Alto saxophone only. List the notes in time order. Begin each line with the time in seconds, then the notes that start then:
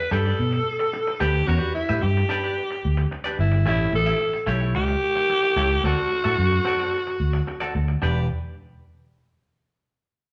0.12 A4
1.20 G4
1.47 F#4
1.75 E4
2.02 G4
3.40 E4
3.68 E4
3.95 A4
4.76 G4
5.85 F#4
8.04 G4